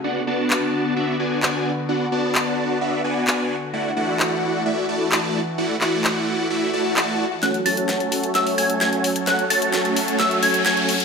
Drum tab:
HH |----------------|----------------|----------------|----------------|
CP |----x-------x---|----x-------x---|----x-------x---|--x-x-------x---|
SD |----------------|----------------|----------------|----------------|

HH |xxoxxxoxxooxxxox|xxoxxxoxxxoxxxox|
CP |----------------|----------------|
SD |o---o---o---o---|o---o---o---o---|